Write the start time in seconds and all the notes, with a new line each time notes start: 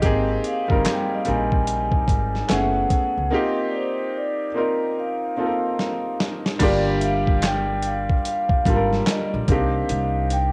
0.02 G#1 A#3 C4 D#4 G4 G#4 D#5, kick, closed hi-hat
0.44 F5, closed hi-hat
0.68 G1 G3 A#3 C4 D#4 A#4, kick
0.85 snare, clap, closed hi-hat
0.93 G5
1.04 F5
1.14 D#5
1.21 F5, closed hi-hat
1.25 A#1 G3 A#3 C4 D#4 G#5
1.52 kick
1.67 closed hi-hat
1.91 kick
2.08 G#1, kick, closed hi-hat
2.35 snare
2.48 F#1 A3 B3 C#4 E4 G#4 F#5, snare, clap, closed hi-hat
2.90 kick, closed hi-hat
3.18 C#2
3.31 A#3 C4 D#4 F4 G4 D#5
3.69 D5
3.76 C5
4.17 D5
4.54 A#3 C4 D#4 F4 A#4
4.58 D#5
4.99 F5
5.37 A#3 C4 D#4 F4 A4
5.47 A#4
5.79 snare
6.20 snare
6.46 snare
6.59 G1 G3 A#3 D4 F4 G4, kick, closed hi-hat, crash
6.64 D5
6.98 E5, closed hi-hat
7.04 F5
7.27 kick
7.42 G5, snare, clap, closed hi-hat
7.82 F5, closed hi-hat
8.10 kick
8.25 F5, closed hi-hat
8.49 kick
8.65 G#1 D3 G3 A#3 F4 F5, kick, closed hi-hat
8.70 A4
8.76 A#4
8.93 snare
9.07 D#5, snare, clap, closed hi-hat
9.34 A#1
9.48 C2 A#3 C4 D4 D#4 G4 F5, kick, closed hi-hat
9.89 C2, closed hi-hat
10.30 G5, closed hi-hat